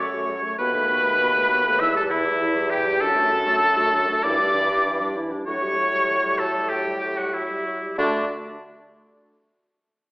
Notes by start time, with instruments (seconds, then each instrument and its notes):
Already playing: bassoon F#2
0.00 french horn F#3, clarinet F#4, oboe C#5, flute C#6
0.14 french horn A3, clarinet A4
0.29 french horn F#3, clarinet F#4
0.43 french horn A3, clarinet A4
0.58 bassoon D#2, french horn B3, clarinet F#4, oboe B4, flute B5
0.73 french horn A3, clarinet D#4
0.88 french horn B3, clarinet F#4
1.03 french horn A3, clarinet D#4
1.18 french horn B3, clarinet F#4
1.33 french horn A3, clarinet D#4
1.49 french horn B3, clarinet F#4
1.64 french horn A3, clarinet D#4
1.80 bassoon E2, french horn E3, clarinet E4, oboe E5, flute E6
1.95 french horn G3, clarinet G4, oboe A4, flute A5
2.10 french horn E3, oboe E4, clarinet E4, flute E5
2.25 french horn G3, clarinet G4
2.41 french horn E3, clarinet E4
2.55 french horn G3, clarinet G4
2.70 french horn E3, clarinet E4, oboe G4, flute G5
2.86 french horn G3, clarinet G4
3.01 bassoon F#2, french horn F#3, clarinet D4, oboe A4, flute A5
3.16 french horn A3, clarinet F#4
3.30 french horn F#3, clarinet D4
3.46 french horn A3, clarinet F#4
3.61 french horn F#3, clarinet D4
3.76 french horn A3, clarinet F#4
3.92 french horn F#3, clarinet D4
4.08 french horn A3, clarinet F#4
4.23 bassoon G2, french horn E3, clarinet E4, oboe D5, flute D6
4.40 french horn G3, clarinet D4
4.55 french horn E3, clarinet E4
4.70 french horn G3, clarinet D4
4.85 french horn E3, clarinet E4
5.00 french horn G3, clarinet D4
5.16 french horn E3, clarinet E4
5.31 french horn G3, clarinet D4
5.46 bassoon A2, french horn F#3, clarinet F#4, oboe C#5, flute C#6
5.62 french horn G3, clarinet G4
5.77 french horn F#3, clarinet F#4
5.93 french horn G3, clarinet G4
6.08 french horn F#3, clarinet F#4
6.23 french horn G3, clarinet G4
6.38 french horn F#3, clarinet F#4, oboe A4, flute A5
6.55 french horn G3, clarinet G4
6.69 french horn F#3, clarinet F#4, oboe G4, flute G5
6.86 french horn G3, clarinet G4
7.01 french horn F#3, clarinet F#4
7.17 french horn G3, oboe F#4, clarinet G4, flute F#5
7.33 french horn F#3, oboe E4, clarinet F#4, flute E5
7.49 french horn G3, clarinet G4
7.65 french horn F#3, clarinet F#4
7.81 french horn G3, clarinet G4
7.97 bassoon D3, french horn A3, oboe D4, clarinet F#4, flute D5